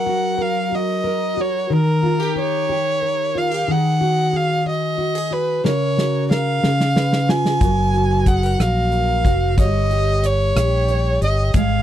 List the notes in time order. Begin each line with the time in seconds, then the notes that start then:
Already playing: F#3 A#4 F#5
0.06 F#4
0.38 A#4 F5
0.72 F#4 D#5
1.04 A#4
1.37 F#4 C#5
1.70 D#3 A#4
2.03 F4
2.20 G4
2.36 A#4 C#5
2.69 G4
3.02 A#4
3.35 F4 F5
3.51 G4
3.67 D#3 G#4 F#5
4.01 F#4
4.33 G#4 F5
4.65 F#4 D#5
4.98 F#4
5.15 G#4
5.31 F#4 B4
5.64 C#3 A#4 C#5, snare
5.97 F#4, snare
6.30 A#4 F5, snare
6.63 C#3, snare
6.80 snare
6.96 B4, snare
7.13 snare
7.29 F4 G#5, snare
7.45 snare
7.61 F#1 F#3 A#4, kick, closed hi-hat
7.94 F#4, closed hi-hat
8.26 G#4 F#5, kick, closed hi-hat
8.43 A#4
8.59 A#1 F#4 F5, cross-stick, closed hi-hat
8.92 A#4, closed hi-hat
9.25 F1 F#4, kick, closed hi-hat
9.58 G1 G3 C#5 D#5, kick, closed hi-hat
9.91 G4, closed hi-hat
10.23 C#5, closed hi-hat
10.56 A#1 G4, cross-stick, closed hi-hat
10.88 C#5, closed hi-hat
11.22 G1 G4 D#5, closed hi-hat
11.54 G#1 G#3 G#4 F5, kick, closed hi-hat